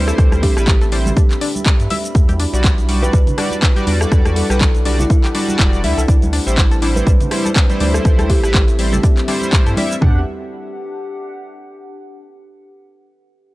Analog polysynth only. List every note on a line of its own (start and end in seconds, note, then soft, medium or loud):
0.00 0.53 G3 medium
0.00 0.53 E4 medium
0.00 0.54 C5 loud
0.56 0.72 G3 medium
0.56 0.72 E4 medium
0.56 0.72 B4 loud
0.92 1.10 G3 medium
0.92 1.10 E4 medium
0.92 1.10 C5 medium
2.53 2.69 G3 medium
2.53 2.69 F#4 medium
2.53 2.69 D5 loud
2.88 3.16 G3 medium
2.88 3.16 F#4 medium
2.88 3.16 D5 loud
3.38 3.56 G3 loud
3.38 3.56 F#4 medium
3.38 3.56 D5 loud
3.76 4.47 G3 loud
3.76 4.47 F#4 medium
3.76 4.47 D5 loud
4.50 4.66 G3 medium
4.50 4.66 F#4 medium
4.50 4.66 B4 loud
4.85 5.03 G3 medium
4.85 5.03 F#4 medium
4.85 5.03 D5 loud
5.34 5.81 G3 loud
5.34 5.81 F#4 medium
5.34 5.81 D5 loud
5.84 6.01 G3 medium
5.84 6.01 E4 medium
5.84 6.02 E5 loud
6.47 6.62 G3 medium
6.47 6.62 E4 medium
6.47 6.63 C5 loud
6.82 7.09 G3 medium
6.82 7.09 E4 medium
6.82 7.09 C5 loud
7.31 7.49 G3 loud
7.31 7.49 E4 medium
7.31 7.49 C5 loud
7.69 8.40 G3 loud
7.69 8.40 E4 medium
7.69 8.41 C5 loud
8.43 8.59 G3 loud
8.43 8.59 E4 medium
8.43 8.59 B4 loud
8.79 8.96 G3 medium
8.79 8.97 E4 medium
8.79 8.97 C5 loud
9.28 9.75 G3 loud
9.28 9.75 E4 medium
9.28 9.75 C5 loud
9.77 9.95 G3 loud
9.77 9.95 E4 medium
9.77 9.95 E5 loud
10.01 10.20 D4 medium
10.01 10.21 G4 medium
10.01 10.21 F#5 loud